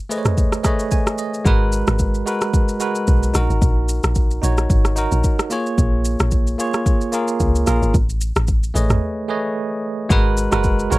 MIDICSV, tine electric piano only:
0, 0, Header, 1, 2, 480
1, 0, Start_track
1, 0, Tempo, 540541
1, 1293, Time_signature, 4, 2, 24, 8
1, 9755, End_track
2, 0, Start_track
2, 0, Title_t, "Tine electric piano"
2, 0, Program_c, 0, 4
2, 0, Control_c, 0, 64, 127
2, 83, Note_on_c, 0, 57, 87
2, 88, Note_on_c, 0, 68, 72
2, 94, Note_on_c, 0, 71, 75
2, 99, Note_on_c, 0, 72, 62
2, 105, Note_on_c, 0, 75, 91
2, 157, Note_on_c, 0, 73, 76
2, 159, Note_off_c, 0, 72, 0
2, 482, Note_off_c, 0, 57, 0
2, 484, Note_off_c, 0, 68, 0
2, 487, Note_off_c, 0, 71, 0
2, 492, Note_off_c, 0, 75, 0
2, 519, Note_off_c, 0, 73, 0
2, 562, Note_on_c, 0, 57, 83
2, 568, Note_on_c, 0, 68, 73
2, 573, Note_on_c, 0, 71, 75
2, 573, Note_on_c, 0, 83, 70
2, 579, Note_on_c, 0, 73, 74
2, 584, Note_on_c, 0, 75, 90
2, 796, Note_off_c, 0, 83, 0
2, 813, Note_on_c, 0, 80, 77
2, 1036, Note_off_c, 0, 80, 0
2, 1043, Note_off_c, 0, 75, 0
2, 1054, Note_on_c, 0, 75, 71
2, 1153, Note_off_c, 0, 57, 0
2, 1156, Note_off_c, 0, 68, 0
2, 1159, Note_off_c, 0, 71, 0
2, 1161, Note_off_c, 0, 73, 0
2, 1277, Note_off_c, 0, 75, 0
2, 1283, Note_on_c, 0, 56, 108
2, 1290, Note_on_c, 0, 66, 92
2, 1297, Note_on_c, 0, 70, 96
2, 1302, Control_c, 0, 64, 0
2, 1305, Note_on_c, 0, 71, 114
2, 1462, Control_c, 0, 64, 127
2, 1874, Note_off_c, 0, 56, 0
2, 1877, Note_off_c, 0, 66, 0
2, 1881, Note_off_c, 0, 70, 0
2, 1885, Note_off_c, 0, 71, 0
2, 2002, Note_on_c, 0, 56, 82
2, 2009, Note_on_c, 0, 66, 74
2, 2016, Note_on_c, 0, 70, 76
2, 2024, Note_on_c, 0, 71, 91
2, 2401, Note_off_c, 0, 56, 0
2, 2405, Note_off_c, 0, 66, 0
2, 2408, Note_off_c, 0, 70, 0
2, 2412, Note_off_c, 0, 71, 0
2, 2483, Note_on_c, 0, 56, 81
2, 2490, Note_on_c, 0, 66, 76
2, 2497, Note_on_c, 0, 70, 74
2, 2504, Note_on_c, 0, 71, 92
2, 2882, Note_off_c, 0, 56, 0
2, 2885, Note_off_c, 0, 66, 0
2, 2888, Note_off_c, 0, 70, 0
2, 2892, Note_off_c, 0, 71, 0
2, 2963, Note_on_c, 0, 63, 87
2, 2974, Note_on_c, 0, 66, 79
2, 2984, Control_c, 0, 64, 0
2, 2984, Note_on_c, 0, 70, 96
2, 3119, Control_c, 0, 64, 127
2, 3741, Note_off_c, 0, 63, 0
2, 3746, Note_off_c, 0, 66, 0
2, 3751, Note_off_c, 0, 70, 0
2, 3923, Note_on_c, 0, 63, 84
2, 3934, Note_on_c, 0, 66, 79
2, 3945, Note_on_c, 0, 73, 91
2, 4322, Note_off_c, 0, 63, 0
2, 4327, Note_off_c, 0, 66, 0
2, 4332, Note_off_c, 0, 73, 0
2, 4404, Note_on_c, 0, 63, 86
2, 4415, Note_on_c, 0, 66, 76
2, 4426, Note_on_c, 0, 70, 94
2, 4884, Note_on_c, 0, 58, 92
2, 4888, Note_off_c, 0, 63, 0
2, 4891, Note_on_c, 0, 65, 78
2, 4894, Note_off_c, 0, 66, 0
2, 4899, Note_off_c, 0, 70, 0
2, 4899, Note_on_c, 0, 68, 78
2, 4905, Control_c, 0, 64, 0
2, 4906, Note_on_c, 0, 73, 103
2, 5082, Control_c, 0, 64, 127
2, 5661, Note_off_c, 0, 58, 0
2, 5665, Note_off_c, 0, 65, 0
2, 5669, Note_off_c, 0, 68, 0
2, 5672, Note_off_c, 0, 73, 0
2, 5844, Note_on_c, 0, 58, 80
2, 5851, Note_on_c, 0, 65, 78
2, 5858, Note_on_c, 0, 68, 75
2, 5866, Note_on_c, 0, 73, 95
2, 6242, Note_off_c, 0, 58, 0
2, 6245, Note_off_c, 0, 65, 0
2, 6249, Note_off_c, 0, 68, 0
2, 6253, Note_off_c, 0, 73, 0
2, 6323, Note_on_c, 0, 58, 86
2, 6330, Note_on_c, 0, 65, 79
2, 6338, Note_on_c, 0, 68, 79
2, 6345, Note_on_c, 0, 70, 96
2, 6722, Note_off_c, 0, 58, 0
2, 6725, Note_off_c, 0, 65, 0
2, 6729, Note_off_c, 0, 68, 0
2, 6732, Note_off_c, 0, 70, 0
2, 6803, Note_on_c, 0, 58, 75
2, 6810, Note_on_c, 0, 65, 73
2, 6817, Note_on_c, 0, 68, 72
2, 6824, Note_on_c, 0, 70, 88
2, 7048, Note_off_c, 0, 58, 0
2, 7051, Note_off_c, 0, 65, 0
2, 7055, Note_off_c, 0, 68, 0
2, 7059, Note_off_c, 0, 70, 0
2, 7064, Control_c, 0, 64, 0
2, 7201, Control_c, 0, 64, 127
2, 7761, Note_on_c, 0, 57, 84
2, 7767, Note_on_c, 0, 68, 79
2, 7772, Note_on_c, 0, 71, 79
2, 7778, Note_on_c, 0, 73, 77
2, 7783, Note_on_c, 0, 75, 95
2, 8161, Note_off_c, 0, 57, 0
2, 8163, Note_off_c, 0, 68, 0
2, 8166, Note_off_c, 0, 71, 0
2, 8169, Note_off_c, 0, 73, 0
2, 8171, Note_off_c, 0, 75, 0
2, 8242, Note_on_c, 0, 57, 86
2, 8248, Note_on_c, 0, 68, 77
2, 8254, Note_on_c, 0, 71, 74
2, 8259, Note_on_c, 0, 73, 77
2, 8264, Note_on_c, 0, 75, 95
2, 8833, Note_off_c, 0, 57, 0
2, 8836, Note_off_c, 0, 68, 0
2, 8839, Note_off_c, 0, 71, 0
2, 8841, Note_off_c, 0, 73, 0
2, 8844, Note_off_c, 0, 75, 0
2, 8962, Note_on_c, 0, 56, 115
2, 8969, Note_on_c, 0, 66, 100
2, 8977, Note_on_c, 0, 70, 101
2, 8984, Control_c, 0, 64, 0
2, 8984, Note_on_c, 0, 71, 124
2, 9132, Control_c, 0, 64, 127
2, 9260, Note_off_c, 0, 56, 0
2, 9264, Note_off_c, 0, 66, 0
2, 9268, Note_off_c, 0, 70, 0
2, 9271, Note_off_c, 0, 71, 0
2, 9334, Note_on_c, 0, 56, 88
2, 9341, Note_on_c, 0, 66, 80
2, 9348, Note_on_c, 0, 70, 78
2, 9355, Note_on_c, 0, 71, 99
2, 9623, Note_off_c, 0, 56, 0
2, 9626, Note_off_c, 0, 66, 0
2, 9630, Note_off_c, 0, 70, 0
2, 9633, Note_off_c, 0, 71, 0
2, 9682, Note_on_c, 0, 56, 88
2, 9690, Note_on_c, 0, 66, 78
2, 9697, Note_on_c, 0, 70, 83
2, 9704, Note_on_c, 0, 73, 95
2, 9755, Note_off_c, 0, 56, 0
2, 9755, Note_off_c, 0, 66, 0
2, 9755, Note_off_c, 0, 70, 0
2, 9755, Note_off_c, 0, 73, 0
2, 9755, End_track
0, 0, End_of_file